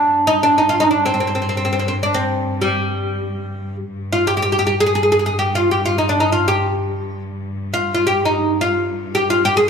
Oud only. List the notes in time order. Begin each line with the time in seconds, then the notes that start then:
Already playing: D4
0.27 D#4
0.43 D4
0.58 D#4
0.69 F4
0.80 D#4
0.91 D4
1.06 C4
1.14 C4
1.20 C4
1.27 C4
1.35 C4
1.42 C4
1.49 C4
1.57 C4
1.65 C4
1.73 C4
1.79 C4
1.88 C4
2.03 D4
2.14 C4
2.62 G3
4.12 F4
4.27 G4
4.37 G4
4.42 G4
4.52 G4
4.59 G4
4.67 G4
4.80 G#4
4.87 G#4
4.95 G#4
5.03 G#4
5.12 G#4
5.19 G#4
5.26 G#4
5.39 G4
5.55 F4
5.71 G4
5.86 F4
5.98 D#4
6.09 D4
6.20 D#4
6.32 F4
6.48 G4
7.74 F4
7.95 F4
8.07 G4
8.25 D#4
8.61 F4
9.15 G4
9.30 F4
9.45 G4
9.57 G#4